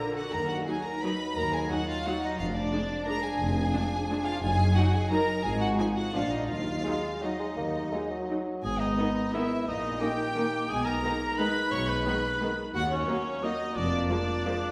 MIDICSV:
0, 0, Header, 1, 9, 480
1, 0, Start_track
1, 0, Key_signature, -6, "minor"
1, 0, Tempo, 351700
1, 445, Time_signature, 3, 2, 24, 8
1, 1412, Tempo, 339367
1, 8132, Tempo, 354610
1, 11986, Key_signature, 5, "minor"
1, 12932, Tempo, 340909
1, 20512, End_track
2, 0, Start_track
2, 0, Title_t, "Violin section"
2, 0, Program_c, 0, 48
2, 0, Note_on_c, 0, 82, 66
2, 163, Note_off_c, 0, 82, 0
2, 210, Note_on_c, 0, 78, 59
2, 439, Note_off_c, 0, 78, 0
2, 440, Note_on_c, 0, 82, 69
2, 668, Note_on_c, 0, 78, 55
2, 674, Note_off_c, 0, 82, 0
2, 767, Note_off_c, 0, 78, 0
2, 912, Note_on_c, 0, 80, 59
2, 1142, Note_on_c, 0, 82, 60
2, 1159, Note_off_c, 0, 80, 0
2, 1387, Note_on_c, 0, 83, 64
2, 1399, Note_off_c, 0, 82, 0
2, 1875, Note_off_c, 0, 83, 0
2, 1876, Note_on_c, 0, 82, 74
2, 2115, Note_off_c, 0, 82, 0
2, 2120, Note_on_c, 0, 80, 62
2, 2366, Note_off_c, 0, 80, 0
2, 2372, Note_on_c, 0, 78, 70
2, 2619, Note_off_c, 0, 78, 0
2, 2628, Note_on_c, 0, 77, 62
2, 2862, Note_off_c, 0, 77, 0
2, 2866, Note_on_c, 0, 78, 68
2, 3101, Note_off_c, 0, 78, 0
2, 3114, Note_on_c, 0, 75, 62
2, 3331, Note_on_c, 0, 77, 77
2, 3333, Note_off_c, 0, 75, 0
2, 3422, Note_off_c, 0, 77, 0
2, 3560, Note_on_c, 0, 74, 60
2, 4282, Note_on_c, 0, 82, 88
2, 4287, Note_off_c, 0, 74, 0
2, 4525, Note_off_c, 0, 82, 0
2, 4525, Note_on_c, 0, 80, 71
2, 5969, Note_off_c, 0, 80, 0
2, 5980, Note_on_c, 0, 77, 72
2, 6204, Note_on_c, 0, 80, 85
2, 6205, Note_off_c, 0, 77, 0
2, 6670, Note_off_c, 0, 80, 0
2, 6685, Note_on_c, 0, 78, 69
2, 6934, Note_off_c, 0, 78, 0
2, 6936, Note_on_c, 0, 80, 75
2, 7172, Note_on_c, 0, 82, 67
2, 7181, Note_off_c, 0, 80, 0
2, 7637, Note_off_c, 0, 82, 0
2, 7641, Note_on_c, 0, 80, 75
2, 7879, Note_off_c, 0, 80, 0
2, 7886, Note_on_c, 0, 78, 65
2, 7985, Note_off_c, 0, 78, 0
2, 8138, Note_on_c, 0, 80, 70
2, 8235, Note_off_c, 0, 80, 0
2, 8379, Note_on_c, 0, 78, 63
2, 8617, Note_off_c, 0, 78, 0
2, 8622, Note_on_c, 0, 77, 64
2, 8857, Note_on_c, 0, 75, 55
2, 8860, Note_off_c, 0, 77, 0
2, 9081, Note_on_c, 0, 77, 72
2, 9087, Note_off_c, 0, 75, 0
2, 10047, Note_off_c, 0, 77, 0
2, 10079, Note_on_c, 0, 75, 49
2, 11522, Note_off_c, 0, 75, 0
2, 11975, Note_on_c, 0, 80, 71
2, 12191, Note_off_c, 0, 80, 0
2, 12206, Note_on_c, 0, 75, 56
2, 12928, Note_on_c, 0, 76, 65
2, 12929, Note_off_c, 0, 75, 0
2, 13399, Note_off_c, 0, 76, 0
2, 13402, Note_on_c, 0, 75, 67
2, 13869, Note_off_c, 0, 75, 0
2, 13878, Note_on_c, 0, 79, 72
2, 14849, Note_off_c, 0, 79, 0
2, 14862, Note_on_c, 0, 80, 79
2, 15072, Note_on_c, 0, 82, 68
2, 15086, Note_off_c, 0, 80, 0
2, 15810, Note_on_c, 0, 83, 72
2, 15820, Note_off_c, 0, 82, 0
2, 16280, Note_off_c, 0, 83, 0
2, 16285, Note_on_c, 0, 85, 78
2, 16520, Note_on_c, 0, 83, 64
2, 16524, Note_off_c, 0, 85, 0
2, 17514, Note_off_c, 0, 83, 0
2, 17738, Note_on_c, 0, 78, 84
2, 17957, Note_off_c, 0, 78, 0
2, 17965, Note_on_c, 0, 73, 64
2, 18692, Note_off_c, 0, 73, 0
2, 18716, Note_on_c, 0, 75, 66
2, 19169, Note_on_c, 0, 74, 72
2, 19182, Note_off_c, 0, 75, 0
2, 19622, Note_off_c, 0, 74, 0
2, 19638, Note_on_c, 0, 74, 67
2, 20512, Note_off_c, 0, 74, 0
2, 20512, End_track
3, 0, Start_track
3, 0, Title_t, "Cor anglais"
3, 0, Program_c, 1, 69
3, 12002, Note_on_c, 1, 68, 59
3, 12205, Note_off_c, 1, 68, 0
3, 12217, Note_on_c, 1, 63, 66
3, 12920, Note_off_c, 1, 63, 0
3, 12934, Note_on_c, 1, 64, 58
3, 13392, Note_off_c, 1, 64, 0
3, 13421, Note_on_c, 1, 63, 55
3, 13870, Note_off_c, 1, 63, 0
3, 13879, Note_on_c, 1, 67, 62
3, 14842, Note_on_c, 1, 68, 66
3, 14863, Note_off_c, 1, 67, 0
3, 15080, Note_on_c, 1, 70, 70
3, 15102, Note_off_c, 1, 68, 0
3, 15825, Note_on_c, 1, 71, 64
3, 15846, Note_off_c, 1, 70, 0
3, 16281, Note_on_c, 1, 73, 72
3, 16302, Note_off_c, 1, 71, 0
3, 16530, Note_on_c, 1, 71, 68
3, 16551, Note_off_c, 1, 73, 0
3, 17519, Note_off_c, 1, 71, 0
3, 17742, Note_on_c, 1, 66, 62
3, 17847, Note_off_c, 1, 66, 0
3, 17977, Note_on_c, 1, 61, 72
3, 18702, Note_on_c, 1, 63, 55
3, 18723, Note_off_c, 1, 61, 0
3, 19175, Note_on_c, 1, 62, 65
3, 19196, Note_off_c, 1, 63, 0
3, 19649, Note_off_c, 1, 62, 0
3, 19664, Note_on_c, 1, 62, 66
3, 20512, Note_off_c, 1, 62, 0
3, 20512, End_track
4, 0, Start_track
4, 0, Title_t, "Violin section"
4, 0, Program_c, 2, 48
4, 0, Note_on_c, 2, 70, 65
4, 212, Note_off_c, 2, 70, 0
4, 212, Note_on_c, 2, 66, 51
4, 440, Note_off_c, 2, 66, 0
4, 446, Note_on_c, 2, 70, 59
4, 669, Note_on_c, 2, 66, 53
4, 677, Note_off_c, 2, 70, 0
4, 912, Note_on_c, 2, 68, 54
4, 916, Note_off_c, 2, 66, 0
4, 1160, Note_off_c, 2, 68, 0
4, 1167, Note_on_c, 2, 70, 56
4, 1404, Note_on_c, 2, 71, 50
4, 1407, Note_off_c, 2, 70, 0
4, 1875, Note_on_c, 2, 70, 59
4, 1883, Note_off_c, 2, 71, 0
4, 2107, Note_on_c, 2, 68, 51
4, 2114, Note_off_c, 2, 70, 0
4, 2355, Note_on_c, 2, 66, 58
4, 2360, Note_off_c, 2, 68, 0
4, 2600, Note_on_c, 2, 65, 62
4, 2611, Note_off_c, 2, 66, 0
4, 2848, Note_off_c, 2, 65, 0
4, 2852, Note_on_c, 2, 66, 52
4, 3086, Note_on_c, 2, 63, 52
4, 3094, Note_off_c, 2, 66, 0
4, 3307, Note_on_c, 2, 65, 52
4, 3320, Note_off_c, 2, 63, 0
4, 3533, Note_on_c, 2, 62, 60
4, 3546, Note_off_c, 2, 65, 0
4, 4273, Note_off_c, 2, 62, 0
4, 4288, Note_on_c, 2, 70, 70
4, 4527, Note_on_c, 2, 68, 61
4, 4533, Note_off_c, 2, 70, 0
4, 5941, Note_off_c, 2, 68, 0
4, 5971, Note_on_c, 2, 65, 65
4, 6201, Note_off_c, 2, 65, 0
4, 6204, Note_on_c, 2, 68, 77
4, 6669, Note_on_c, 2, 66, 61
4, 6670, Note_off_c, 2, 68, 0
4, 6922, Note_on_c, 2, 68, 70
4, 6926, Note_off_c, 2, 66, 0
4, 7174, Note_off_c, 2, 68, 0
4, 7178, Note_on_c, 2, 70, 68
4, 7640, Note_off_c, 2, 70, 0
4, 7646, Note_on_c, 2, 68, 68
4, 7868, Note_on_c, 2, 66, 60
4, 7876, Note_off_c, 2, 68, 0
4, 8119, Note_off_c, 2, 66, 0
4, 8123, Note_on_c, 2, 68, 58
4, 8366, Note_on_c, 2, 66, 59
4, 8373, Note_off_c, 2, 68, 0
4, 8607, Note_on_c, 2, 65, 55
4, 8616, Note_off_c, 2, 66, 0
4, 8842, Note_on_c, 2, 63, 50
4, 8853, Note_off_c, 2, 65, 0
4, 9076, Note_on_c, 2, 65, 53
4, 9080, Note_off_c, 2, 63, 0
4, 10063, Note_on_c, 2, 63, 37
4, 10064, Note_off_c, 2, 65, 0
4, 11485, Note_off_c, 2, 63, 0
4, 12458, Note_on_c, 2, 59, 42
4, 12460, Note_on_c, 2, 63, 41
4, 12567, Note_off_c, 2, 59, 0
4, 12568, Note_off_c, 2, 63, 0
4, 12943, Note_on_c, 2, 63, 41
4, 12944, Note_on_c, 2, 59, 41
4, 13056, Note_off_c, 2, 63, 0
4, 13057, Note_off_c, 2, 59, 0
4, 13881, Note_on_c, 2, 63, 41
4, 13884, Note_on_c, 2, 61, 44
4, 13994, Note_off_c, 2, 63, 0
4, 13997, Note_off_c, 2, 61, 0
4, 14390, Note_on_c, 2, 61, 42
4, 14390, Note_on_c, 2, 63, 37
4, 14502, Note_off_c, 2, 61, 0
4, 14502, Note_off_c, 2, 63, 0
4, 15339, Note_on_c, 2, 59, 44
4, 15341, Note_on_c, 2, 63, 44
4, 15451, Note_off_c, 2, 59, 0
4, 15454, Note_off_c, 2, 63, 0
4, 15835, Note_on_c, 2, 59, 37
4, 15835, Note_on_c, 2, 63, 42
4, 15948, Note_off_c, 2, 59, 0
4, 15948, Note_off_c, 2, 63, 0
4, 16779, Note_on_c, 2, 63, 44
4, 16783, Note_on_c, 2, 59, 42
4, 16892, Note_off_c, 2, 63, 0
4, 16895, Note_off_c, 2, 59, 0
4, 17269, Note_on_c, 2, 59, 40
4, 17274, Note_on_c, 2, 63, 41
4, 17381, Note_off_c, 2, 59, 0
4, 17387, Note_off_c, 2, 63, 0
4, 18208, Note_on_c, 2, 58, 43
4, 18209, Note_on_c, 2, 63, 42
4, 18321, Note_off_c, 2, 58, 0
4, 18321, Note_off_c, 2, 63, 0
4, 18706, Note_on_c, 2, 63, 42
4, 18707, Note_on_c, 2, 58, 43
4, 18819, Note_off_c, 2, 63, 0
4, 18820, Note_off_c, 2, 58, 0
4, 19649, Note_on_c, 2, 58, 50
4, 19761, Note_off_c, 2, 58, 0
4, 20142, Note_on_c, 2, 58, 47
4, 20144, Note_off_c, 2, 58, 0
4, 20144, Note_on_c, 2, 58, 48
4, 20256, Note_off_c, 2, 58, 0
4, 20512, End_track
5, 0, Start_track
5, 0, Title_t, "French horn section"
5, 0, Program_c, 3, 60
5, 0, Note_on_c, 3, 53, 49
5, 0, Note_on_c, 3, 62, 49
5, 194, Note_off_c, 3, 53, 0
5, 218, Note_off_c, 3, 62, 0
5, 456, Note_on_c, 3, 63, 47
5, 457, Note_on_c, 3, 54, 52
5, 3275, Note_off_c, 3, 54, 0
5, 3275, Note_off_c, 3, 63, 0
5, 3340, Note_on_c, 3, 53, 54
5, 3340, Note_on_c, 3, 62, 53
5, 6154, Note_off_c, 3, 62, 0
5, 6203, Note_on_c, 3, 63, 62
5, 6209, Note_on_c, 3, 54, 58
5, 6211, Note_off_c, 3, 53, 0
5, 6646, Note_off_c, 3, 63, 0
5, 6649, Note_off_c, 3, 54, 0
5, 6682, Note_on_c, 3, 63, 52
5, 6688, Note_on_c, 3, 54, 51
5, 7170, Note_off_c, 3, 63, 0
5, 7173, Note_off_c, 3, 54, 0
5, 7195, Note_on_c, 3, 63, 56
5, 7200, Note_on_c, 3, 54, 50
5, 7639, Note_off_c, 3, 63, 0
5, 7651, Note_off_c, 3, 54, 0
5, 7656, Note_on_c, 3, 63, 56
5, 7659, Note_on_c, 3, 53, 56
5, 8595, Note_off_c, 3, 53, 0
5, 8605, Note_off_c, 3, 63, 0
5, 8611, Note_on_c, 3, 53, 46
5, 8617, Note_on_c, 3, 62, 49
5, 9074, Note_off_c, 3, 53, 0
5, 9077, Note_off_c, 3, 62, 0
5, 9095, Note_on_c, 3, 63, 45
5, 9099, Note_on_c, 3, 54, 44
5, 9856, Note_off_c, 3, 54, 0
5, 9856, Note_off_c, 3, 63, 0
5, 10086, Note_on_c, 3, 63, 45
5, 10091, Note_on_c, 3, 54, 46
5, 11731, Note_off_c, 3, 63, 0
5, 11734, Note_off_c, 3, 54, 0
5, 11993, Note_on_c, 3, 59, 51
5, 11994, Note_on_c, 3, 56, 50
5, 13349, Note_off_c, 3, 56, 0
5, 13349, Note_off_c, 3, 59, 0
5, 13428, Note_on_c, 3, 58, 54
5, 13432, Note_on_c, 3, 63, 51
5, 14842, Note_off_c, 3, 63, 0
5, 14859, Note_on_c, 3, 63, 54
5, 14860, Note_on_c, 3, 56, 52
5, 14863, Note_off_c, 3, 58, 0
5, 17696, Note_off_c, 3, 63, 0
5, 17697, Note_off_c, 3, 56, 0
5, 17737, Note_on_c, 3, 66, 52
5, 17740, Note_on_c, 3, 58, 50
5, 19146, Note_off_c, 3, 66, 0
5, 19170, Note_on_c, 3, 65, 57
5, 20512, Note_off_c, 3, 58, 0
5, 20512, Note_off_c, 3, 65, 0
5, 20512, End_track
6, 0, Start_track
6, 0, Title_t, "Bassoon"
6, 0, Program_c, 4, 70
6, 9554, Note_on_c, 4, 56, 52
6, 10067, Note_on_c, 4, 54, 45
6, 10088, Note_off_c, 4, 56, 0
6, 10303, Note_off_c, 4, 54, 0
6, 10311, Note_on_c, 4, 56, 48
6, 10415, Note_off_c, 4, 56, 0
6, 10546, Note_on_c, 4, 58, 53
6, 11025, Note_on_c, 4, 56, 52
6, 11045, Note_off_c, 4, 58, 0
6, 11265, Note_off_c, 4, 56, 0
6, 11273, Note_on_c, 4, 54, 40
6, 11973, Note_off_c, 4, 54, 0
6, 20512, End_track
7, 0, Start_track
7, 0, Title_t, "Viola section"
7, 0, Program_c, 5, 48
7, 0, Note_on_c, 5, 50, 46
7, 442, Note_off_c, 5, 50, 0
7, 922, Note_on_c, 5, 63, 37
7, 923, Note_on_c, 5, 54, 35
7, 1031, Note_off_c, 5, 63, 0
7, 1032, Note_off_c, 5, 54, 0
7, 1411, Note_on_c, 5, 54, 37
7, 1412, Note_on_c, 5, 63, 37
7, 1524, Note_off_c, 5, 54, 0
7, 1526, Note_off_c, 5, 63, 0
7, 2362, Note_on_c, 5, 54, 39
7, 2364, Note_on_c, 5, 63, 40
7, 2476, Note_off_c, 5, 54, 0
7, 2477, Note_off_c, 5, 63, 0
7, 2866, Note_on_c, 5, 63, 39
7, 2867, Note_on_c, 5, 54, 43
7, 2979, Note_off_c, 5, 63, 0
7, 2980, Note_off_c, 5, 54, 0
7, 3798, Note_on_c, 5, 62, 48
7, 3800, Note_on_c, 5, 56, 45
7, 3912, Note_off_c, 5, 62, 0
7, 3914, Note_off_c, 5, 56, 0
7, 4298, Note_on_c, 5, 56, 42
7, 4298, Note_on_c, 5, 62, 43
7, 4411, Note_off_c, 5, 56, 0
7, 4411, Note_off_c, 5, 62, 0
7, 5236, Note_on_c, 5, 56, 44
7, 5240, Note_on_c, 5, 62, 45
7, 5349, Note_off_c, 5, 56, 0
7, 5353, Note_off_c, 5, 62, 0
7, 5751, Note_on_c, 5, 56, 49
7, 5754, Note_on_c, 5, 62, 47
7, 5864, Note_off_c, 5, 56, 0
7, 5867, Note_off_c, 5, 62, 0
7, 6696, Note_on_c, 5, 54, 45
7, 6696, Note_on_c, 5, 63, 53
7, 6809, Note_off_c, 5, 54, 0
7, 6809, Note_off_c, 5, 63, 0
7, 7177, Note_on_c, 5, 63, 46
7, 7180, Note_on_c, 5, 54, 45
7, 7290, Note_off_c, 5, 63, 0
7, 7293, Note_off_c, 5, 54, 0
7, 8123, Note_on_c, 5, 53, 42
7, 8131, Note_on_c, 5, 63, 44
7, 8232, Note_off_c, 5, 53, 0
7, 8239, Note_off_c, 5, 63, 0
7, 8608, Note_on_c, 5, 62, 38
7, 8610, Note_on_c, 5, 53, 38
7, 8717, Note_off_c, 5, 62, 0
7, 8718, Note_off_c, 5, 53, 0
7, 9573, Note_on_c, 5, 54, 37
7, 9575, Note_on_c, 5, 63, 38
7, 9681, Note_off_c, 5, 54, 0
7, 9683, Note_off_c, 5, 63, 0
7, 10088, Note_on_c, 5, 63, 32
7, 10089, Note_on_c, 5, 54, 34
7, 10196, Note_off_c, 5, 63, 0
7, 10197, Note_off_c, 5, 54, 0
7, 11028, Note_on_c, 5, 54, 31
7, 11028, Note_on_c, 5, 63, 33
7, 11136, Note_off_c, 5, 54, 0
7, 11137, Note_off_c, 5, 63, 0
7, 11523, Note_on_c, 5, 54, 28
7, 11523, Note_on_c, 5, 63, 34
7, 11631, Note_off_c, 5, 54, 0
7, 11631, Note_off_c, 5, 63, 0
7, 12455, Note_on_c, 5, 51, 44
7, 12458, Note_on_c, 5, 59, 42
7, 12563, Note_off_c, 5, 51, 0
7, 12566, Note_off_c, 5, 59, 0
7, 12943, Note_on_c, 5, 59, 42
7, 12950, Note_on_c, 5, 51, 43
7, 13056, Note_off_c, 5, 59, 0
7, 13063, Note_off_c, 5, 51, 0
7, 13881, Note_on_c, 5, 58, 42
7, 13887, Note_on_c, 5, 51, 41
7, 13994, Note_off_c, 5, 58, 0
7, 13999, Note_off_c, 5, 51, 0
7, 14377, Note_on_c, 5, 51, 41
7, 14385, Note_on_c, 5, 58, 43
7, 14489, Note_off_c, 5, 51, 0
7, 14498, Note_off_c, 5, 58, 0
7, 15326, Note_on_c, 5, 56, 44
7, 15327, Note_on_c, 5, 51, 47
7, 15438, Note_off_c, 5, 56, 0
7, 15439, Note_off_c, 5, 51, 0
7, 15813, Note_on_c, 5, 51, 44
7, 15816, Note_on_c, 5, 56, 41
7, 15926, Note_off_c, 5, 51, 0
7, 15929, Note_off_c, 5, 56, 0
7, 16766, Note_on_c, 5, 56, 46
7, 16769, Note_on_c, 5, 51, 45
7, 16879, Note_off_c, 5, 56, 0
7, 16882, Note_off_c, 5, 51, 0
7, 17269, Note_on_c, 5, 56, 41
7, 17270, Note_on_c, 5, 51, 43
7, 17382, Note_off_c, 5, 56, 0
7, 17383, Note_off_c, 5, 51, 0
7, 18204, Note_on_c, 5, 54, 48
7, 18206, Note_on_c, 5, 58, 44
7, 18317, Note_off_c, 5, 54, 0
7, 18319, Note_off_c, 5, 58, 0
7, 18691, Note_on_c, 5, 54, 43
7, 18694, Note_on_c, 5, 58, 42
7, 18804, Note_off_c, 5, 54, 0
7, 18806, Note_off_c, 5, 58, 0
7, 19637, Note_on_c, 5, 53, 45
7, 19639, Note_on_c, 5, 56, 39
7, 19750, Note_off_c, 5, 53, 0
7, 19752, Note_off_c, 5, 56, 0
7, 20136, Note_on_c, 5, 53, 48
7, 20139, Note_on_c, 5, 56, 44
7, 20249, Note_off_c, 5, 53, 0
7, 20252, Note_off_c, 5, 56, 0
7, 20512, End_track
8, 0, Start_track
8, 0, Title_t, "Cello section"
8, 0, Program_c, 6, 48
8, 436, Note_on_c, 6, 39, 54
8, 833, Note_off_c, 6, 39, 0
8, 1880, Note_on_c, 6, 39, 54
8, 2279, Note_off_c, 6, 39, 0
8, 3316, Note_on_c, 6, 41, 59
8, 3712, Note_off_c, 6, 41, 0
8, 4763, Note_on_c, 6, 41, 67
8, 5159, Note_off_c, 6, 41, 0
8, 6200, Note_on_c, 6, 42, 69
8, 6595, Note_off_c, 6, 42, 0
8, 7650, Note_on_c, 6, 44, 65
8, 8047, Note_off_c, 6, 44, 0
8, 8613, Note_on_c, 6, 46, 47
8, 9009, Note_off_c, 6, 46, 0
8, 9086, Note_on_c, 6, 39, 51
8, 9481, Note_off_c, 6, 39, 0
8, 10542, Note_on_c, 6, 39, 49
8, 10934, Note_off_c, 6, 39, 0
8, 11992, Note_on_c, 6, 44, 55
8, 12374, Note_off_c, 6, 44, 0
8, 13404, Note_on_c, 6, 46, 64
8, 13797, Note_off_c, 6, 46, 0
8, 14844, Note_on_c, 6, 47, 54
8, 15237, Note_off_c, 6, 47, 0
8, 16291, Note_on_c, 6, 47, 60
8, 16691, Note_off_c, 6, 47, 0
8, 17734, Note_on_c, 6, 39, 63
8, 18131, Note_off_c, 6, 39, 0
8, 19179, Note_on_c, 6, 41, 70
8, 19569, Note_off_c, 6, 41, 0
8, 20512, End_track
9, 0, Start_track
9, 0, Title_t, "Double bass section"
9, 0, Program_c, 7, 48
9, 445, Note_on_c, 7, 39, 51
9, 837, Note_off_c, 7, 39, 0
9, 1890, Note_on_c, 7, 39, 50
9, 2285, Note_off_c, 7, 39, 0
9, 3327, Note_on_c, 7, 29, 64
9, 3718, Note_off_c, 7, 29, 0
9, 4770, Note_on_c, 7, 29, 68
9, 5163, Note_off_c, 7, 29, 0
9, 6208, Note_on_c, 7, 30, 65
9, 6599, Note_off_c, 7, 30, 0
9, 7646, Note_on_c, 7, 32, 63
9, 8045, Note_off_c, 7, 32, 0
9, 8621, Note_on_c, 7, 34, 41
9, 9013, Note_off_c, 7, 34, 0
9, 9090, Note_on_c, 7, 39, 54
9, 9482, Note_off_c, 7, 39, 0
9, 10545, Note_on_c, 7, 39, 49
9, 10936, Note_off_c, 7, 39, 0
9, 11999, Note_on_c, 7, 32, 52
9, 12378, Note_off_c, 7, 32, 0
9, 13415, Note_on_c, 7, 34, 53
9, 13802, Note_off_c, 7, 34, 0
9, 14851, Note_on_c, 7, 35, 52
9, 15241, Note_off_c, 7, 35, 0
9, 16296, Note_on_c, 7, 35, 64
9, 16693, Note_off_c, 7, 35, 0
9, 17743, Note_on_c, 7, 39, 62
9, 18136, Note_off_c, 7, 39, 0
9, 19174, Note_on_c, 7, 29, 54
9, 19567, Note_off_c, 7, 29, 0
9, 20512, End_track
0, 0, End_of_file